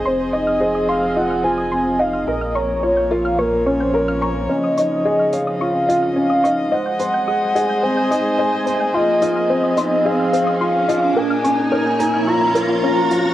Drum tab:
HH |--------|--------|-x-x-x-x|-x-x-x-x|

HH |-x-x-x-x|-x-x-x-x|